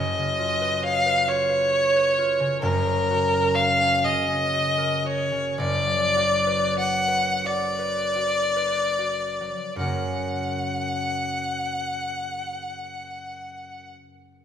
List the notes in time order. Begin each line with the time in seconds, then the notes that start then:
Already playing: F#1 F#2 C#4 D#5
0.18 C#3
0.39 F4
0.61 B4
0.83 C#5 F5
1.06 B4
1.27 F4 C#5
1.49 B4
1.72 C#5
1.96 B4
2.19 F4
2.40 C#3
2.61 F#1 F#2 A#4
2.86 C#3
3.10 F#4
3.34 A#4
3.55 F#4 F5
3.80 C#4
4.04 C#3 D#5
4.28 C#4
4.53 F#4
4.78 A#4
5.05 F#4 C#5
5.31 C#3
5.58 F#1 F#2 D5
5.87 F#3
6.17 F#4
6.47 B4
6.77 F#4 F#5
7.08 B4
7.44 F#4 D5
7.79 B4
8.16 F#4
8.56 B4
8.99 F#4
9.41 F#3
9.76 F#2 C#3 F#5
9.80 A#3 C#4 F#4 A#4